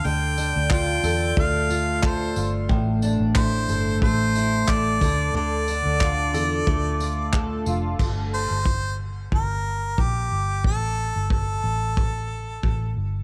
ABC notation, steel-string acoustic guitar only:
X:1
M:4/4
L:1/8
Q:"Swing 16ths" 1/4=91
K:Dm
V:1 name="Steel-string acoustic guitar"
D, D F A A, F A F | A,, D E A A, E A D, | D, D F A A, F A F | z8 |
z8 |]